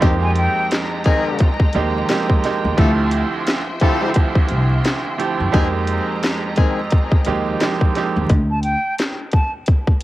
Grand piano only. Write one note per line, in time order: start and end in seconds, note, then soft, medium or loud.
0.01 1.63 F2 loud
0.01 1.63 G#3 medium
0.01 1.63 A#3 medium
0.01 1.63 C4 medium
0.01 1.63 D#4 medium
0.01 1.63 G4 loud
1.75 2.07 F2 medium
1.75 2.07 G#3 medium
1.75 2.07 A#3 medium
1.75 2.07 C4 medium
1.75 2.07 D#4 medium
1.75 2.07 G4 loud
2.10 2.42 F2 medium
2.10 2.42 G#3 medium
2.10 2.42 A#3 medium
2.10 2.42 C4 medium
2.10 2.42 D#4 medium
2.10 2.42 G4 medium
2.44 2.76 F2 medium
2.44 2.76 G#3 medium
2.44 2.76 A#3 medium
2.44 2.77 C4 medium
2.44 2.77 D#4 medium
2.44 2.77 G4 medium
2.77 3.59 D2 loud
2.77 3.59 F3 medium
2.77 3.59 A3 medium
2.77 3.59 C4 medium
2.77 3.59 E4 loud
2.77 3.60 G4 loud
3.82 5.11 D2 medium
3.82 5.11 F3 medium
3.82 5.11 A3 medium
3.82 5.11 C4 medium
3.82 5.11 E4 medium
3.82 5.11 G4 loud
5.18 5.51 D2 medium
5.18 5.51 F3 medium
5.18 5.51 A3 medium
5.18 5.51 C4 medium
5.18 5.51 E4 medium
5.18 5.52 G4 medium
5.52 7.14 F2 loud
5.52 7.15 G#3 medium
5.52 7.15 A#3 medium
5.52 7.15 C4 medium
5.52 7.15 D#4 medium
5.52 7.15 G4 loud
7.26 7.59 F2 medium
7.26 7.59 G#3 medium
7.26 7.59 A#3 medium
7.26 7.59 C4 medium
7.26 7.59 D#4 medium
7.26 7.59 G4 loud
7.62 7.93 F2 medium
7.62 7.94 G#3 medium
7.62 7.94 A#3 medium
7.62 7.94 C4 medium
7.62 7.94 D#4 medium
7.62 7.94 G4 medium
7.96 8.28 F2 medium
7.96 8.28 G#3 medium
7.96 8.28 A#3 medium
7.96 8.28 C4 medium
7.96 8.28 D#4 medium
7.96 8.28 G4 medium